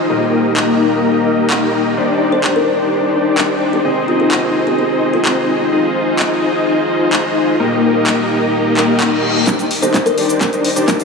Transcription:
0.10 1.94 A#3 medium
0.10 1.94 D#4 medium
0.10 1.94 G4 medium
0.10 1.94 A#4 medium
0.10 1.94 D#5 medium
0.57 clap loud
1.50 clap loud
1.97 3.82 D4 medium
1.97 3.82 D#4 medium
1.97 3.82 G4 medium
1.97 3.82 C5 medium
1.97 3.82 D5 medium
2.32 2.48 C5 medium
2.44 clap loud
2.56 2.71 A#4 medium
3.38 clap loud
3.73 3.89 G4 medium
3.85 5.69 C4 medium
3.85 5.69 D#4 medium
3.85 5.69 G#4 medium
3.85 5.69 C5 medium
3.85 5.69 D#5 medium
4.08 4.16 F4 medium
4.20 4.27 F4 medium
4.32 clap loud
4.67 4.74 G4 medium
4.79 4.86 G4 medium
5.13 5.49 F4 medium
5.25 clap loud
5.72 7.57 D#4 medium
5.72 7.57 F4 medium
5.72 7.57 G#4 medium
5.72 7.57 C5 medium
5.72 7.57 D#5 medium
6.19 clap loud
7.13 clap loud
7.60 9.44 A#3 medium
7.60 9.45 D#4 medium
7.60 9.45 G4 medium
7.60 9.44 A#4 medium
7.60 9.44 D#5 medium
8.07 clap loud
8.54 reverse cymbal medium
8.77 clap medium
9.00 clap loud
9.47 9.65 D4 medium
9.47 9.65 D#4 medium
9.47 9.65 G4 medium
9.47 9.65 C5 medium
9.47 9.65 D5 loud
9.47 kick loud
9.47 clap soft
9.47 closed hi-hat medium
9.47 riser medium
9.47 cabasa medium
9.59 closed hi-hat soft
9.59 cabasa soft
9.71 open hi-hat loud
9.82 10.15 D4 loud
9.82 10.15 D#4 medium
9.82 10.15 G4 medium
9.82 9.98 C5 medium
9.82 10.15 C5 medium
9.82 10.15 D#5 loud
9.82 closed hi-hat soft
9.82 cabasa medium
9.94 kick loud
9.94 clap soft
9.94 closed hi-hat medium
9.94 cabasa medium
10.06 10.21 A#4 medium
10.06 closed hi-hat soft
10.06 cabasa soft
10.17 10.50 D4 medium
10.17 10.50 D#4 medium
10.17 10.50 G4 medium
10.17 10.50 C5 medium
10.17 10.50 D5 loud
10.17 open hi-hat medium
10.29 closed hi-hat soft
10.29 cabasa medium
10.41 kick loud
10.41 clap soft
10.41 closed hi-hat medium
10.41 cabasa medium
10.53 10.70 D4 medium
10.53 10.70 D#4 medium
10.53 10.70 G4 medium
10.53 10.70 C5 medium
10.53 10.70 D#5 medium
10.53 closed hi-hat soft
10.53 cabasa soft
10.64 open hi-hat loud
10.76 10.97 D4 medium
10.76 10.97 D#4 medium
10.76 10.97 G4 medium
10.76 10.97 C5 medium
10.76 10.97 D5 loud
10.76 closed hi-hat soft
10.76 cabasa medium
10.88 kick loud
10.88 clap medium
10.88 closed hi-hat medium
10.88 cabasa medium
11.00 11.04 D4 medium
11.00 11.04 D#4 medium
11.00 11.04 G4 medium
11.00 11.04 C5 medium
11.00 11.04 F5 medium
11.00 closed hi-hat soft
11.00 cabasa soft

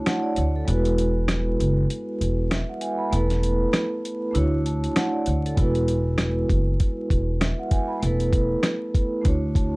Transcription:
0.00 0.63 A3 medium
0.00 0.64 D4 medium
0.00 0.65 E4 medium
0.00 0.66 F#4 medium
0.00 0.36 C#5 medium
0.00 0.69 A5 medium
0.06 0.24 F#5 medium
0.06 cross-stick medium
0.06 snare loud
0.06 closed hi-hat medium
0.23 0.35 D5 medium
0.36 0.62 D2 medium
0.36 0.54 C#5 medium
0.36 closed hi-hat medium
0.56 0.85 A4 medium
0.65 1.56 E1 loud
0.65 3.07 G#3 medium
0.65 3.08 B3 medium
0.65 3.09 E4 medium
0.65 closed hi-hat medium
0.70 3.10 F#4 medium
0.70 3.10 B4 medium
0.85 closed hi-hat medium
0.98 closed hi-hat medium
1.28 cross-stick loud
1.28 snare loud
1.28 closed hi-hat medium
1.60 1.85 F#1 medium
1.60 closed hi-hat medium
1.90 closed hi-hat medium
2.21 2.61 E1 medium
2.21 closed hi-hat medium
2.51 2.68 E5 medium
2.51 cross-stick medium
2.51 snare loud
2.51 closed hi-hat medium
2.69 2.81 F#5 medium
2.81 2.99 G#5 medium
2.81 closed hi-hat medium
2.98 3.28 B5 medium
3.10 3.63 E1 loud
3.10 4.30 A3 medium
3.10 4.32 B3 medium
3.10 4.33 E4 medium
3.10 closed hi-hat medium
3.15 4.34 A4 medium
3.15 4.35 B4 medium
3.30 snare soft
3.30 closed hi-hat medium
3.43 closed hi-hat medium
3.73 cross-stick loud
3.73 snare loud
3.73 closed hi-hat medium
4.05 closed hi-hat medium
4.31 4.85 D2 loud
4.31 5.53 A3 medium
4.31 5.54 D4 medium
4.31 5.55 E4 medium
4.31 closed hi-hat medium
4.36 5.55 F#4 medium
4.36 4.66 C#5 medium
4.66 4.95 A5 medium
4.66 closed hi-hat medium
4.84 closed hi-hat medium
4.96 5.13 F#5 medium
4.96 cross-stick medium
4.96 snare loud
4.96 closed hi-hat medium
5.13 5.25 D5 medium
5.26 5.52 D2 medium
5.26 5.43 C#5 medium
5.26 closed hi-hat medium
5.46 5.74 A4 medium
5.46 closed hi-hat medium
5.55 6.45 E1 loud
5.55 7.97 G#3 medium
5.55 7.98 B3 medium
5.55 7.99 E4 medium
5.55 kick loud
5.55 closed hi-hat medium
5.60 7.99 F#4 medium
5.60 8.00 B4 medium
5.75 closed hi-hat medium
5.88 closed hi-hat medium
6.18 cross-stick medium
6.18 snare loud
6.18 closed hi-hat medium
6.50 6.75 F#1 medium
6.50 kick medium
6.50 closed hi-hat medium
6.80 kick loud
6.80 closed hi-hat medium
7.10 7.51 E1 medium
7.10 kick medium
7.10 closed hi-hat medium
7.40 7.58 E5 medium
7.40 cross-stick medium
7.40 snare loud
7.40 closed hi-hat medium
7.59 7.71 F#5 medium
7.71 7.89 G#5 medium
7.71 kick loud
7.71 closed hi-hat medium
7.87 8.18 B5 medium
8.00 8.53 E1 loud
8.00 9.20 A3 medium
8.00 9.22 B3 medium
8.00 9.23 E4 medium
8.00 closed hi-hat medium
8.05 9.24 A4 medium
8.05 9.24 B4 medium
8.20 closed hi-hat medium
8.33 kick medium
8.33 closed hi-hat medium
8.63 cross-stick medium
8.63 snare loud
8.63 closed hi-hat loud
8.94 kick medium
8.94 closed hi-hat medium
9.21 9.76 A3 medium
9.21 9.76 D4 medium
9.21 9.76 E4 medium
9.21 kick loud
9.21 closed hi-hat medium
9.25 9.75 D2 loud
9.25 9.76 F#4 medium
9.25 9.56 C#5 medium
9.55 9.76 A5 medium
9.55 kick medium
9.55 closed hi-hat medium

